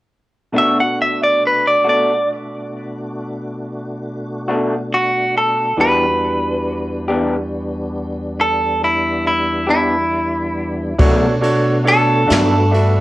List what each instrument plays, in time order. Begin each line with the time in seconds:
0.52 grand piano B2 D4 F#4 A4 C#6, clean electric guitar B2 A3 D4 F#4, tonewheel organ B2 A3 D4 F#4
0.58 clean electric guitar E5
0.80 clean electric guitar F#5
1.02 clean electric guitar E5
1.23 clean electric guitar D5
1.47 clean electric guitar B4
1.67 clean electric guitar D5
1.84 clean electric guitar B2 A3 D4 F#4
1.89 clean electric guitar D5
4.48 clean electric guitar B2 A3 D4 F#4
4.94 clean electric guitar F#4
5.37 clean electric guitar A4
5.77 tonewheel organ E2 G3 B3 D4, grand piano E3 D4 F#4 G4 B4, clean electric guitar E3 B3 D4 G4
5.81 clean electric guitar B4
7.08 clean electric guitar E3 B3 D4 G4
8.41 clean electric guitar A4
8.84 clean electric guitar E4
9.27 clean electric guitar E4
9.67 clean electric guitar E3 B3 D4 E4 G4
10.98 clean electric guitar B2 F#3 A3 D4, upright bass B2, tonewheel organ A3 B3 D4 F#4, grand piano D4 F#4 A4 C#5, kick, ride
11.41 grand piano D4 F#4 A4 C#5, ride
11.84 grand piano D4 F#4 A4 C#5, ride
11.88 clean electric guitar A4
12.27 upright bass G2, clean electric guitar F#3 A3 D4, grand piano D4 F#4 A4 E5, ride
12.31 clean electric guitar B2, snare
12.71 grand piano D4 F#4 A4 E5, ride